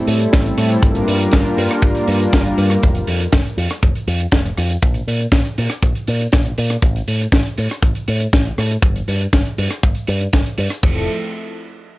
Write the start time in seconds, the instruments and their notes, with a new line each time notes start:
Already playing: analog synth pad G3 A3 C4 E4 A4
0.07 fingered electric bass A2, open hi-hat, shaker
0.20 closed hi-hat, shaker
0.33 fingered electric bass A1, kick, snare, closed hi-hat, shaker
0.46 closed hi-hat, shaker
0.57 fingered electric bass A2, analog synth pad G3 A3 C4 E4 A4, cross-stick, open hi-hat, shaker
0.70 closed hi-hat, shaker
0.82 fingered electric bass G1, analog synth pad G3 A#3 D4 F4 A#4, kick, closed hi-hat, shaker
0.95 closed hi-hat, shaker
1.08 fingered electric bass G2, open hi-hat, shaker
1.19 analog synth pad G3 A#3 D4 F4 A#4, closed hi-hat, shaker
1.32 fingered electric bass G1, kick, snare, closed hi-hat, shaker
1.45 closed hi-hat, shaker
1.58 fingered electric bass G2, open hi-hat, shaker
1.71 cross-stick, closed hi-hat, shaker
1.82 fingered electric bass G1, kick, closed hi-hat, shaker
1.95 closed hi-hat, shaker
2.07 fingered electric bass G2, analog synth pad G3 A#3 D4 F4 A#4, open hi-hat, shaker
2.20 closed hi-hat, shaker
2.33 fingered electric bass G1, kick, snare, closed hi-hat, shaker
2.46 closed hi-hat, shaker
2.58 fingered electric bass G2, analog synth pad G3 A#3 D4 F4 A#4, open hi-hat, shaker
2.70 cross-stick, closed hi-hat, shaker
2.83 fingered electric bass F1, kick, closed hi-hat, shaker
2.95 closed hi-hat, shaker
3.07 fingered electric bass F2, open hi-hat, shaker
3.20 closed hi-hat, shaker
3.32 fingered electric bass F1, kick, snare, closed hi-hat, shaker
3.45 closed hi-hat, shaker
3.57 fingered electric bass F2, open hi-hat, shaker
3.70 cross-stick, closed hi-hat, shaker
3.83 fingered electric bass F1, kick, closed hi-hat, shaker
3.95 closed hi-hat, shaker
4.07 fingered electric bass F2, open hi-hat, shaker
4.20 closed hi-hat, shaker
4.32 fingered electric bass F1, kick, snare, closed hi-hat, shaker
4.45 closed hi-hat, shaker
4.57 fingered electric bass F2, cross-stick, open hi-hat, shaker
4.70 closed hi-hat, shaker
4.82 fingered electric bass A#1, kick, closed hi-hat, shaker
4.94 closed hi-hat, shaker
5.07 fingered electric bass A#2, open hi-hat, shaker
5.20 closed hi-hat, shaker
5.32 fingered electric bass A#1, kick, snare, closed hi-hat, shaker
5.45 closed hi-hat, shaker
5.58 fingered electric bass A#2, open hi-hat, shaker
5.70 cross-stick, closed hi-hat, shaker
5.82 fingered electric bass A#1, kick, closed hi-hat, shaker
5.95 closed hi-hat, shaker
6.07 fingered electric bass A#2, open hi-hat, shaker
6.21 closed hi-hat, shaker
6.32 fingered electric bass A#1, kick, snare, closed hi-hat, shaker
6.45 closed hi-hat, shaker
6.58 fingered electric bass A#2, open hi-hat, shaker
6.70 cross-stick, closed hi-hat, shaker
6.82 fingered electric bass A1, kick, closed hi-hat, shaker
6.96 closed hi-hat, shaker
7.08 fingered electric bass A2, open hi-hat, shaker
7.21 closed hi-hat, shaker
7.32 fingered electric bass A1, kick, snare, closed hi-hat, shaker
7.46 closed hi-hat, shaker
7.58 fingered electric bass A2, open hi-hat, shaker
7.70 cross-stick, closed hi-hat, shaker
7.83 fingered electric bass A1, kick, closed hi-hat, shaker
7.95 closed hi-hat, shaker
8.08 fingered electric bass A2, open hi-hat, shaker
8.20 closed hi-hat, shaker
8.33 fingered electric bass A1, kick, snare, closed hi-hat, shaker
8.45 closed hi-hat, shaker
8.58 fingered electric bass A2, cross-stick, open hi-hat, shaker
8.71 closed hi-hat, shaker
8.82 fingered electric bass G1, kick, closed hi-hat, shaker
8.96 closed hi-hat, shaker
9.08 fingered electric bass G2, open hi-hat, shaker
9.21 closed hi-hat, shaker
9.33 fingered electric bass G1, kick, snare, closed hi-hat, shaker
9.45 closed hi-hat, shaker
9.58 fingered electric bass G2, open hi-hat, shaker
9.70 cross-stick, closed hi-hat, shaker
9.83 fingered electric bass G1, kick, closed hi-hat, shaker
9.95 closed hi-hat, shaker
10.07 fingered electric bass G2, open hi-hat, shaker
10.21 closed hi-hat, shaker
10.33 fingered electric bass G1, kick, snare, closed hi-hat, shaker
10.46 closed hi-hat, shaker
10.58 fingered electric bass G2, open hi-hat, shaker
10.70 cross-stick, closed hi-hat, shaker
10.82 fingered electric bass F1, analog synth pad F3 A3 C4 E4 A4, kick, crash